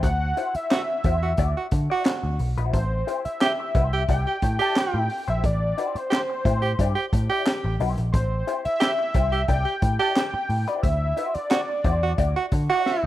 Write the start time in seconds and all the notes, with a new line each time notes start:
0.03 D2 F#5, kick, closed hi-hat
0.37 E4 F#4 C5, closed hi-hat
0.55 E5, muted picked electric bass stroke, closed hi-hat
0.71 F#4, muted clean electric guitar stroke, snare, clap, closed hi-hat
0.89 muted clean electric guitar stroke
1.04 E2 E4 F#4 C5, kick, closed hi-hat
1.23 F#4, muted clean electric guitar stroke
1.37 D2 E4 F#4 D5, kick, closed hi-hat
1.57 F#4
1.71 D3, muted clean electric guitar stroke, kick, closed hi-hat
1.90 E4 F#4 D5
2.05 muted clean electric guitar stroke, snare, clap, closed hi-hat
2.24 D2, muted clean electric guitar stroke
2.39 B1, open hi-hat
2.58 A#1 E4 F#4 C5, closed hi-hat
2.73 A1 C5, kick, closed hi-hat
3.07 E4 G4 C5, closed hi-hat
3.25 E5, muted picked electric bass stroke, closed hi-hat
3.41 G4, muted clean electric guitar stroke, snare, clap, closed hi-hat
3.60 muted clean electric guitar stroke
3.75 C2 E4 G4 C5, kick, closed hi-hat
3.93 G4, muted clean electric guitar stroke
4.08 C2 E4 G4 D5 G5, kick, closed hi-hat
4.27 G4
4.42 A2, muted clean electric guitar stroke, kick, closed hi-hat
4.59 E4 G4 D5 A5
4.76 G5, muted clean electric guitar stroke, snare, clap, closed hi-hat
4.94 A2, muted clean electric guitar stroke
5.10 open hi-hat
5.28 A#1 E4 G4 C5 E5, closed hi-hat
5.44 A1 D5, kick, closed hi-hat
5.78 E4 G4 C5, closed hi-hat
5.95 C5, muted picked electric bass stroke, closed hi-hat
6.10 G4, muted clean electric guitar stroke, snare, clap, closed hi-hat
6.30 muted clean electric guitar stroke
6.45 A2 E4 G4 C5, kick, closed hi-hat
6.62 G4, muted clean electric guitar stroke
6.79 G2 E4 G4 D5, kick, closed hi-hat
6.95 G4
7.13 A2, muted clean electric guitar stroke, kick, closed hi-hat
7.30 E4 G4 D5
7.46 snare, clap, closed hi-hat
7.65 A1, muted clean electric guitar stroke
7.80 B1 E4 G4 C5, open hi-hat
7.97 A#1, muted clean electric guitar stroke, closed hi-hat
8.12 A1 C5, kick, closed hi-hat
8.47 E4 G4 C5, closed hi-hat
8.65 E5, muted picked electric bass stroke, closed hi-hat
8.80 G4, muted clean electric guitar stroke, snare, clap, closed hi-hat
8.99 muted clean electric guitar stroke
9.14 C2 E4 G4 C5, kick, closed hi-hat
9.32 G4, muted clean electric guitar stroke
9.48 C2 E4 G4 D5 G5, kick, closed hi-hat
9.65 G4
9.82 A2, muted clean electric guitar stroke, kick, closed hi-hat
9.99 E4 G4 D5 A5
10.15 G5, snare, clap, closed hi-hat
10.34 muted picked electric bass stroke, muted clean electric guitar stroke
10.50 A2, open hi-hat
10.67 E4 G4 C5 D5, closed hi-hat
10.83 D2 E5, kick, closed hi-hat
11.17 E4 F#4 C5, closed hi-hat
11.34 D5, muted picked electric bass stroke, closed hi-hat
11.50 F#4, muted clean electric guitar stroke, snare, clap, closed hi-hat
11.69 muted clean electric guitar stroke
11.84 E2 E4 F#4 C5, kick, closed hi-hat
12.02 F#4, muted clean electric guitar stroke
12.18 D2 E4 F#4 D5, kick, closed hi-hat
12.36 F#4
12.52 D3, muted clean electric guitar stroke, kick, closed hi-hat
12.70 E4 F#4 D5
12.85 E5, muted clean electric guitar stroke, snare
13.03 muted clean electric guitar stroke